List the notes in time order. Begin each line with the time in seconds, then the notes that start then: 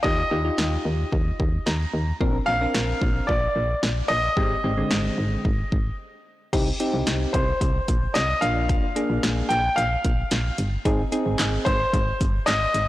0.03 D#2 D#4 F4 G4 D#5, kick
0.31 D#2 D#4 F4 G4
0.45 D#4 F4 G4
0.58 D#2, snare
0.85 D#2
1.12 D#2, kick
1.40 D#2, kick
1.66 D#2 A#5, snare
1.94 D#2
2.21 A#1 C4 D4 A#4, kick
2.46 A#1 C4 D4 A#4 F5
2.61 C4 D4 A#4
2.74 A#1, snare
3.02 A#1, kick
3.27 A#1 D5, kick
3.56 A#1
3.83 A#1, snare
4.08 A#1 D#5
4.37 G#1 G#3 C4 G4, kick
4.64 G#1 G#3 C4 G4
4.77 D3 G#3 C4
4.91 G#1, snare
5.18 G#1
5.45 G#1, kick
5.72 G#1, kick
6.53 C2 C4 D#4 G4, kick, closed hi-hat, crash
6.80 C4 D#4 G4, closed hi-hat
6.94 C2
7.07 C2, snare, closed hi-hat
7.33 C2 C5, kick, closed hi-hat
7.61 C2, kick, closed hi-hat
7.88 A#1, kick, closed hi-hat
8.14 C2 D#5, snare, closed hi-hat
8.41 A#1 A#3 D4 F4 F5, closed hi-hat
8.69 kick, closed hi-hat
8.96 A#3 D4 G#4, closed hi-hat
9.10 A#1
9.23 A#1, snare, closed hi-hat
9.49 A#1 G5, closed hi-hat
9.76 A#1 F5, closed hi-hat
10.05 A#1, kick, closed hi-hat
10.31 A#1, snare, closed hi-hat
10.58 G1, closed hi-hat
10.85 G#1 C4 D#4 G#4, kick, closed hi-hat
11.12 C4 D#4 G#4, closed hi-hat
11.26 G#1
11.39 G#1, snare, clap, closed hi-hat
11.65 G#1 C5, kick, closed hi-hat
11.93 G#1, kick, closed hi-hat
12.21 G1, kick, closed hi-hat
12.46 G#1 D#5, snare, clap, closed hi-hat
12.74 G#1, closed hi-hat